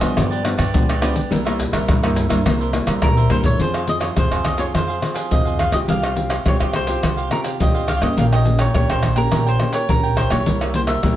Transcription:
Already playing: C3
0.00 C2 F3 B3 D4 G#4 C5 D#5, pandeiro, tamborim, maracas, surdo
0.16 G2 F4 G4 B4 D5, pandeiro, tamborim, maracas, surdo
0.31 G4 B4 D5, pandeiro, maracas
0.44 F3 B3 D4, muted cavaquinho stroke, pandeiro, tamborim
0.58 G2 G4 B4 D5, pandeiro, tamborim, maracas, surdo
0.74 C#2 F3 B3 D4, pandeiro, maracas, surdo
0.88 G4 B4 D5, pandeiro, tamborim, maracas
1.01 F3 B3 D4 F4 G4 B4 D5, pandeiro, tamborim, maracas
1.15 G4 B4 D5, pandeiro, maracas, surdo
1.30 C2 C3 G3 A#3 E4 A#4 C5 E5, pandeiro, maracas, surdo
1.45 G3 A#3 E4 A#4 C5 E5, pandeiro, tamborim, maracas
1.60 muted cavaquinho stroke, pandeiro, maracas, surdo
1.72 C2 A#4 C5 E5, pandeiro, tamborim, maracas, surdo
1.88 G2 E4 A#4 C5 E5, pandeiro, tamborim, maracas, surdo
2.02 G3 A#3 E4 A#4 C5 E5, pandeiro, tamborim, maracas
2.16 pandeiro, maracas
2.29 G2 G3 A#3 E4 A#4 C5 E5, pandeiro, tamborim, maracas, surdo
2.45 C2 C3 G3 A#3 E4 A#4 C5 E5, pandeiro, tamborim, maracas, surdo
2.60 A#4 C5 E5, pandeiro, maracas
2.73 G3 A#3 E4, muted cavaquinho stroke, pandeiro, tamborim, maracas
2.86 C2 A#4 C5 E5, pandeiro, tamborim, maracas, surdo
3.02 G2 A#2 A#4, pandeiro, tamborim, maracas, surdo
3.17 A#4 C5 E5, pandeiro, maracas
3.30 G2 G3 A#3 E4 A#4 C5 E5, pandeiro, surdo
3.44 A#4 C5 C#5 E5, pandeiro, maracas, surdo
3.59 F2 F3 C4 F4 G#4 C5 F5, pandeiro, maracas, surdo
3.74 G#4 C5 F5, pandeiro, tamborim, maracas
3.87 C4 F4 G#4 D#5, muted cavaquinho stroke, pandeiro, maracas
4.00 G#4 C5 C#5 D#5 F5, pandeiro, tamborim, maracas
4.16 F2 C3 C4 F4 G#4 C5 F5, pandeiro, tamborim, maracas, surdo
4.31 F2 G#4 C5 F5, pandeiro, tamborim, maracas
4.45 D#5, pandeiro, tamborim, maracas
4.57 C4 F4 G#4 C5 C#5 F5, pandeiro, maracas
4.73 F2 F3 F4 G#4 C5 F5, pandeiro, tamborim, maracas, surdo
4.88 G#4 C5 F5, pandeiro, maracas
5.01 C4 F4 G#4, muted cavaquinho stroke, pandeiro, tamborim, maracas
5.15 G#4 C5 F5, pandeiro, maracas
5.31 F2 C3 C4 F4 G#4 D#5, pandeiro, maracas, surdo
5.45 G#4 C5 F5, pandeiro, maracas
5.58 F4 G#4 C5 F5, pandeiro, tamborim
5.72 C#2 C4 F4 G4 G#4 C5 D#5 F5, pandeiro, tamborim, maracas
5.88 C2 C3 F4 G4 C5 F5, pandeiro, maracas, surdo
6.02 G4 C5 F5, pandeiro, tamborim, maracas
6.16 C4 F4 G4, muted cavaquinho stroke, pandeiro
6.29 G4 C5 F5, pandeiro, tamborim, maracas
6.45 C2 G2 C4 F4 G4 C5 C#5 F5, pandeiro, tamborim, maracas, surdo
6.59 C2 G4 C5 F5, pandeiro, tamborim, maracas
6.73 C5, pandeiro, tamborim
6.87 C4 F4 G4 C5 F5, pandeiro, maracas
7.02 C2 C3 F4 G4 C5 F5, pandeiro, tamborim, maracas, surdo
7.17 G4 C5 F5, pandeiro, maracas
7.31 C4 F4 G4 A#4, muted cavaquinho stroke, pandeiro, tamborim
7.44 G4 C5 F5, pandeiro, maracas
7.60 C2 G2 C4 F4 G4 D#5, pandeiro, maracas, surdo
7.75 G4 C5 F5, pandeiro, maracas
7.87 F4 G4 C5 F5, pandeiro, tamborim, maracas
8.01 G2 A#3 C#4 G4 C5 D#5 F5, pandeiro, tamborim, maracas
8.17 A#1 A#2 G4 A#4 C#5 F5 G5, pandeiro, maracas, surdo
8.32 A#4 C#5 D#5 G5, pandeiro, tamborim, maracas
8.45 A#3 C#4 G4, muted cavaquinho stroke, pandeiro
8.59 A#4 C#5 G5, pandeiro, tamborim, maracas
8.74 A#1 A#2 A#3 C#4 G4 A#4 C#5 G5, pandeiro, tamborim, maracas, surdo
8.89 A#1 A#4 C5 C#5 G5, pandeiro, tamborim, maracas
9.03 pandeiro, tamborim, maracas, surdo
9.16 A#3 C#4 G4 A#4 C#5 G5, pandeiro, maracas
9.31 A#1 A#2 G4 A#4 C#5 G5, pandeiro, tamborim, maracas, surdo
9.46 A#4 C5 C#5 G5, pandeiro, maracas
9.59 A#3 C#4 G4, muted cavaquinho stroke, pandeiro, tamborim
9.73 A#4 C#5 G5, pandeiro, maracas
9.89 A#1 A#2 A#3 C#4 G4 A#4, pandeiro, maracas, surdo
10.03 A#4 C#5 G5, pandeiro, maracas
10.17 G4 A#4 C5 C#5 G5, pandeiro, tamborim
10.30 B1 A#3 E4 G4 A#4 C#5 G5, pandeiro, tamborim, maracas
10.46 C2 C3 E4 A#4 C5 E5, pandeiro, maracas, surdo
10.61 A#4 C5 E5, pandeiro, tamborim, maracas
10.73 A#3 E4 G4 C5, muted cavaquinho stroke, pandeiro, maracas
10.87 A#4 C5 E5, pandeiro, tamborim, maracas
11.03 C2 G2 A#3 E4 G4 A#4 C5 E5, pandeiro, tamborim, maracas, surdo

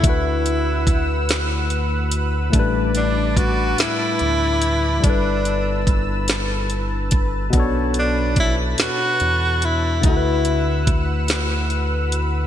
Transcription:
0.00 D3 A3 B4 F#5 E6, kick, closed hi-hat
0.04 D2 E4 F#4
0.09 B4
0.46 closed hi-hat
0.87 kick, closed hi-hat
1.29 snare, closed hi-hat
1.70 closed hi-hat
2.11 closed hi-hat
2.50 A2 A3 D6, kick, closed hi-hat
2.54 A1 G3 D4 A5
2.59 B4
2.95 D4, closed hi-hat
3.37 F#4, kick, closed hi-hat
3.78 D2 E4, snare, closed hi-hat
4.19 D2, closed hi-hat
4.62 closed hi-hat
5.00 G1 G3 D4 A5 E6, kick, closed hi-hat
5.04 D4 E4 A4
5.10 B4
5.45 closed hi-hat
5.87 kick, closed hi-hat
6.28 snare, closed hi-hat
6.70 closed hi-hat
7.11 kick, closed hi-hat
7.50 B2 B3 B4, kick, closed hi-hat
7.54 B1 D4 A4
7.60 C#5
7.94 closed hi-hat
7.99 D4
8.36 E4, kick, closed hi-hat
8.78 E2 F#4, snare, closed hi-hat
9.20 E2, closed hi-hat
9.62 E4, closed hi-hat
10.00 D3 A3, kick, closed hi-hat
10.04 D2 E4 F#4 B4 F#5 E6
10.09 A4
10.17 B4
10.45 closed hi-hat
10.87 kick, closed hi-hat
11.28 snare, closed hi-hat
11.70 closed hi-hat
12.12 closed hi-hat

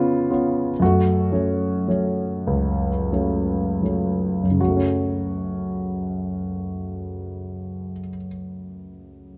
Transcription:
Already playing: C#3 B3 C#4 F4
0.30 B3 C#4 F4
0.80 F#2 A3 F#4
1.32 F#3 A3 C#4
1.88 F#3 A3 C#4
2.47 C#2
3.12 F#3 A3 C#4
3.82 F#3 A3 C#4
4.43 F#2
4.51 C#3
4.60 F#3 F#4
4.68 A3
4.77 C#4

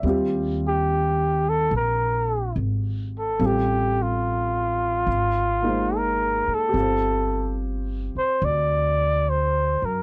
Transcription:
Already playing: E5
0.03 D#2 G3 C4 F4
0.09 G4
0.67 G4
1.49 A4
1.71 A#1
1.76 A#4
2.56 G#1
3.18 A4
3.39 A1 G3 C4 F4 A4
3.46 G4
4.02 F4
5.07 G#1
5.62 G#3 A#3 D#4
5.67 C5
5.96 A#4
6.47 muted upright bass stroke
6.54 A4
6.69 C4 G4
6.74 G1 F4
6.81 C5
8.15 C5, muted upright bass stroke
8.42 D2 D5
9.29 C5
9.82 F#2 A#4

